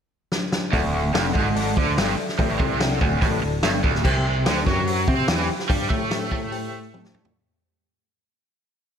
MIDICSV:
0, 0, Header, 1, 7, 480
1, 0, Start_track
1, 0, Tempo, 414365
1, 849, Time_signature, 4, 2, 24, 8
1, 10411, End_track
2, 0, Start_track
2, 0, Title_t, "Reed electric piano"
2, 0, Program_c, 0, 4
2, 835, Note_on_c, 0, 69, 78
2, 835, Note_on_c, 0, 74, 77
2, 843, Note_on_c, 0, 78, 96
2, 1225, Note_off_c, 0, 69, 0
2, 1226, Note_off_c, 0, 74, 0
2, 1229, Note_off_c, 0, 78, 0
2, 1320, Note_on_c, 0, 74, 69
2, 1321, Note_on_c, 0, 69, 82
2, 1323, Note_on_c, 0, 78, 94
2, 1708, Note_off_c, 0, 69, 0
2, 1708, Note_off_c, 0, 74, 0
2, 1709, Note_off_c, 0, 78, 0
2, 1802, Note_on_c, 0, 74, 73
2, 1808, Note_on_c, 0, 81, 96
2, 1811, Note_on_c, 0, 69, 81
2, 2188, Note_off_c, 0, 74, 0
2, 2191, Note_off_c, 0, 81, 0
2, 2193, Note_off_c, 0, 69, 0
2, 2274, Note_on_c, 0, 74, 73
2, 2276, Note_on_c, 0, 69, 84
2, 2278, Note_on_c, 0, 76, 89
2, 2663, Note_off_c, 0, 74, 0
2, 2665, Note_off_c, 0, 69, 0
2, 2666, Note_off_c, 0, 76, 0
2, 2760, Note_on_c, 0, 69, 81
2, 2760, Note_on_c, 0, 74, 69
2, 2765, Note_on_c, 0, 76, 92
2, 3146, Note_off_c, 0, 69, 0
2, 3146, Note_off_c, 0, 74, 0
2, 3149, Note_off_c, 0, 76, 0
2, 3240, Note_on_c, 0, 69, 79
2, 3249, Note_on_c, 0, 74, 71
2, 3250, Note_on_c, 0, 78, 87
2, 3625, Note_off_c, 0, 69, 0
2, 3630, Note_off_c, 0, 74, 0
2, 3630, Note_off_c, 0, 78, 0
2, 3734, Note_on_c, 0, 69, 86
2, 3737, Note_on_c, 0, 74, 75
2, 3744, Note_on_c, 0, 81, 96
2, 4112, Note_off_c, 0, 69, 0
2, 4113, Note_off_c, 0, 74, 0
2, 4117, Note_off_c, 0, 81, 0
2, 4197, Note_on_c, 0, 69, 74
2, 4199, Note_on_c, 0, 74, 76
2, 4204, Note_on_c, 0, 76, 93
2, 4583, Note_off_c, 0, 69, 0
2, 4584, Note_off_c, 0, 74, 0
2, 4587, Note_off_c, 0, 76, 0
2, 4683, Note_on_c, 0, 67, 82
2, 4686, Note_on_c, 0, 79, 92
2, 4691, Note_on_c, 0, 72, 79
2, 5066, Note_off_c, 0, 67, 0
2, 5067, Note_off_c, 0, 79, 0
2, 5070, Note_off_c, 0, 72, 0
2, 5167, Note_on_c, 0, 79, 87
2, 5171, Note_on_c, 0, 67, 83
2, 5173, Note_on_c, 0, 72, 78
2, 5548, Note_off_c, 0, 79, 0
2, 5549, Note_off_c, 0, 67, 0
2, 5550, Note_off_c, 0, 72, 0
2, 5635, Note_on_c, 0, 67, 83
2, 5636, Note_on_c, 0, 72, 76
2, 5637, Note_on_c, 0, 78, 96
2, 6021, Note_off_c, 0, 67, 0
2, 6022, Note_off_c, 0, 72, 0
2, 6023, Note_off_c, 0, 78, 0
2, 6110, Note_on_c, 0, 67, 85
2, 6119, Note_on_c, 0, 72, 79
2, 6120, Note_on_c, 0, 79, 95
2, 6499, Note_off_c, 0, 67, 0
2, 6504, Note_off_c, 0, 72, 0
2, 6504, Note_off_c, 0, 79, 0
2, 6594, Note_on_c, 0, 67, 92
2, 6595, Note_on_c, 0, 72, 76
2, 6596, Note_on_c, 0, 79, 94
2, 6981, Note_off_c, 0, 67, 0
2, 6982, Note_off_c, 0, 72, 0
2, 6982, Note_off_c, 0, 79, 0
2, 7074, Note_on_c, 0, 67, 81
2, 7074, Note_on_c, 0, 72, 75
2, 7076, Note_on_c, 0, 79, 81
2, 7462, Note_off_c, 0, 67, 0
2, 7462, Note_off_c, 0, 72, 0
2, 7463, Note_off_c, 0, 79, 0
2, 7549, Note_on_c, 0, 79, 99
2, 7550, Note_on_c, 0, 67, 88
2, 7557, Note_on_c, 0, 72, 74
2, 7940, Note_off_c, 0, 67, 0
2, 7940, Note_off_c, 0, 79, 0
2, 7944, Note_off_c, 0, 72, 0
2, 8037, Note_on_c, 0, 79, 83
2, 8040, Note_on_c, 0, 67, 83
2, 8041, Note_on_c, 0, 72, 73
2, 8425, Note_off_c, 0, 79, 0
2, 8426, Note_off_c, 0, 67, 0
2, 8427, Note_off_c, 0, 72, 0
2, 10411, End_track
3, 0, Start_track
3, 0, Title_t, "Overdriven electric guitar"
3, 0, Program_c, 1, 29
3, 831, Note_on_c, 1, 38, 96
3, 1306, Note_off_c, 1, 38, 0
3, 1311, Note_on_c, 1, 41, 100
3, 1549, Note_off_c, 1, 41, 0
3, 1554, Note_on_c, 1, 44, 99
3, 2033, Note_off_c, 1, 44, 0
3, 2048, Note_on_c, 1, 50, 101
3, 2280, Note_off_c, 1, 50, 0
3, 2289, Note_on_c, 1, 43, 104
3, 2520, Note_off_c, 1, 43, 0
3, 2768, Note_on_c, 1, 45, 99
3, 2999, Note_off_c, 1, 45, 0
3, 3009, Note_on_c, 1, 48, 102
3, 3479, Note_off_c, 1, 48, 0
3, 3492, Note_on_c, 1, 38, 107
3, 3720, Note_off_c, 1, 38, 0
3, 3726, Note_on_c, 1, 45, 107
3, 3957, Note_off_c, 1, 45, 0
3, 3967, Note_on_c, 1, 38, 70
3, 4157, Note_off_c, 1, 38, 0
3, 4211, Note_on_c, 1, 43, 101
3, 4437, Note_off_c, 1, 43, 0
3, 4442, Note_on_c, 1, 38, 98
3, 4674, Note_off_c, 1, 38, 0
3, 4697, Note_on_c, 1, 48, 95
3, 5161, Note_off_c, 1, 48, 0
3, 5170, Note_on_c, 1, 50, 102
3, 5398, Note_off_c, 1, 50, 0
3, 5404, Note_on_c, 1, 54, 100
3, 5875, Note_off_c, 1, 54, 0
3, 5883, Note_on_c, 1, 60, 97
3, 6114, Note_off_c, 1, 60, 0
3, 6120, Note_on_c, 1, 52, 103
3, 6353, Note_off_c, 1, 52, 0
3, 6598, Note_on_c, 1, 55, 91
3, 6825, Note_off_c, 1, 55, 0
3, 6829, Note_on_c, 1, 57, 105
3, 7304, Note_off_c, 1, 57, 0
3, 7318, Note_on_c, 1, 57, 105
3, 8515, Note_off_c, 1, 57, 0
3, 10411, End_track
4, 0, Start_track
4, 0, Title_t, "Picked electric bass"
4, 0, Program_c, 2, 34
4, 853, Note_on_c, 2, 26, 97
4, 1297, Note_off_c, 2, 26, 0
4, 1324, Note_on_c, 2, 29, 96
4, 1549, Note_off_c, 2, 29, 0
4, 1568, Note_on_c, 2, 32, 96
4, 2014, Note_off_c, 2, 32, 0
4, 2055, Note_on_c, 2, 38, 85
4, 2274, Note_off_c, 2, 38, 0
4, 2288, Note_on_c, 2, 31, 91
4, 2510, Note_off_c, 2, 31, 0
4, 2772, Note_on_c, 2, 33, 97
4, 2992, Note_off_c, 2, 33, 0
4, 3014, Note_on_c, 2, 36, 93
4, 3455, Note_off_c, 2, 36, 0
4, 3490, Note_on_c, 2, 26, 94
4, 3710, Note_off_c, 2, 26, 0
4, 3730, Note_on_c, 2, 33, 87
4, 3949, Note_off_c, 2, 33, 0
4, 3975, Note_on_c, 2, 26, 73
4, 4192, Note_off_c, 2, 26, 0
4, 4213, Note_on_c, 2, 31, 91
4, 4431, Note_off_c, 2, 31, 0
4, 4448, Note_on_c, 2, 26, 97
4, 4668, Note_off_c, 2, 26, 0
4, 4687, Note_on_c, 2, 36, 97
4, 5130, Note_off_c, 2, 36, 0
4, 5169, Note_on_c, 2, 38, 94
4, 5388, Note_off_c, 2, 38, 0
4, 5404, Note_on_c, 2, 42, 91
4, 5848, Note_off_c, 2, 42, 0
4, 5883, Note_on_c, 2, 48, 93
4, 6105, Note_off_c, 2, 48, 0
4, 6122, Note_on_c, 2, 40, 99
4, 6344, Note_off_c, 2, 40, 0
4, 6600, Note_on_c, 2, 43, 92
4, 6824, Note_off_c, 2, 43, 0
4, 6840, Note_on_c, 2, 45, 88
4, 7287, Note_off_c, 2, 45, 0
4, 7319, Note_on_c, 2, 45, 90
4, 8476, Note_off_c, 2, 45, 0
4, 10411, End_track
5, 0, Start_track
5, 0, Title_t, "Muted overdriven electric guitar strokes"
5, 2529, Note_on_c, 9, 29, 56
5, 2645, Note_off_c, 9, 29, 0
5, 6362, Note_on_c, 9, 29, 55
5, 6478, Note_off_c, 9, 29, 0
5, 10411, End_track
6, 0, Start_track
6, 0, Title_t, "Muted picked electric bass strokes"
6, 6362, Note_on_c, 9, 29, 42
6, 6477, Note_off_c, 9, 29, 0
6, 10411, End_track
7, 0, Start_track
7, 0, Title_t, "Drums"
7, 367, Note_on_c, 9, 38, 63
7, 483, Note_off_c, 9, 38, 0
7, 607, Note_on_c, 9, 38, 91
7, 723, Note_off_c, 9, 38, 0
7, 848, Note_on_c, 9, 36, 101
7, 850, Note_on_c, 9, 46, 58
7, 964, Note_off_c, 9, 36, 0
7, 966, Note_off_c, 9, 46, 0
7, 1330, Note_on_c, 9, 46, 56
7, 1332, Note_on_c, 9, 38, 105
7, 1446, Note_off_c, 9, 46, 0
7, 1448, Note_off_c, 9, 38, 0
7, 1568, Note_on_c, 9, 36, 90
7, 1684, Note_off_c, 9, 36, 0
7, 1810, Note_on_c, 9, 46, 63
7, 1925, Note_off_c, 9, 46, 0
7, 2050, Note_on_c, 9, 36, 97
7, 2166, Note_off_c, 9, 36, 0
7, 2292, Note_on_c, 9, 46, 58
7, 2295, Note_on_c, 9, 38, 102
7, 2408, Note_off_c, 9, 46, 0
7, 2410, Note_off_c, 9, 38, 0
7, 2652, Note_on_c, 9, 38, 34
7, 2764, Note_on_c, 9, 46, 54
7, 2768, Note_off_c, 9, 38, 0
7, 2768, Note_on_c, 9, 36, 97
7, 2880, Note_off_c, 9, 46, 0
7, 2884, Note_off_c, 9, 36, 0
7, 3010, Note_on_c, 9, 36, 98
7, 3126, Note_off_c, 9, 36, 0
7, 3248, Note_on_c, 9, 46, 56
7, 3250, Note_on_c, 9, 38, 102
7, 3364, Note_off_c, 9, 46, 0
7, 3366, Note_off_c, 9, 38, 0
7, 3490, Note_on_c, 9, 36, 104
7, 3606, Note_off_c, 9, 36, 0
7, 3729, Note_on_c, 9, 46, 56
7, 3731, Note_on_c, 9, 36, 111
7, 3844, Note_off_c, 9, 46, 0
7, 3846, Note_off_c, 9, 36, 0
7, 4202, Note_on_c, 9, 46, 50
7, 4205, Note_on_c, 9, 38, 100
7, 4318, Note_off_c, 9, 46, 0
7, 4320, Note_off_c, 9, 38, 0
7, 4449, Note_on_c, 9, 36, 107
7, 4565, Note_off_c, 9, 36, 0
7, 4576, Note_on_c, 9, 38, 34
7, 4689, Note_on_c, 9, 49, 93
7, 4690, Note_on_c, 9, 36, 110
7, 4692, Note_off_c, 9, 38, 0
7, 4805, Note_off_c, 9, 49, 0
7, 4806, Note_off_c, 9, 36, 0
7, 5165, Note_on_c, 9, 46, 55
7, 5168, Note_on_c, 9, 38, 106
7, 5281, Note_off_c, 9, 46, 0
7, 5284, Note_off_c, 9, 38, 0
7, 5405, Note_on_c, 9, 36, 93
7, 5407, Note_on_c, 9, 38, 32
7, 5521, Note_off_c, 9, 36, 0
7, 5523, Note_off_c, 9, 38, 0
7, 5645, Note_on_c, 9, 46, 61
7, 5761, Note_off_c, 9, 46, 0
7, 5882, Note_on_c, 9, 36, 99
7, 5998, Note_off_c, 9, 36, 0
7, 6115, Note_on_c, 9, 46, 56
7, 6117, Note_on_c, 9, 38, 102
7, 6230, Note_off_c, 9, 46, 0
7, 6233, Note_off_c, 9, 38, 0
7, 6480, Note_on_c, 9, 38, 31
7, 6596, Note_off_c, 9, 38, 0
7, 6600, Note_on_c, 9, 36, 100
7, 6602, Note_on_c, 9, 46, 62
7, 6716, Note_off_c, 9, 36, 0
7, 6718, Note_off_c, 9, 46, 0
7, 6839, Note_on_c, 9, 36, 107
7, 6954, Note_off_c, 9, 36, 0
7, 7077, Note_on_c, 9, 46, 56
7, 7079, Note_on_c, 9, 38, 98
7, 7193, Note_off_c, 9, 46, 0
7, 7195, Note_off_c, 9, 38, 0
7, 7316, Note_on_c, 9, 36, 98
7, 7432, Note_off_c, 9, 36, 0
7, 7553, Note_on_c, 9, 46, 61
7, 7669, Note_off_c, 9, 46, 0
7, 8040, Note_on_c, 9, 48, 60
7, 8156, Note_off_c, 9, 48, 0
7, 8162, Note_on_c, 9, 38, 60
7, 8275, Note_on_c, 9, 45, 88
7, 8278, Note_off_c, 9, 38, 0
7, 8391, Note_off_c, 9, 45, 0
7, 8398, Note_on_c, 9, 43, 92
7, 8514, Note_off_c, 9, 43, 0
7, 10411, End_track
0, 0, End_of_file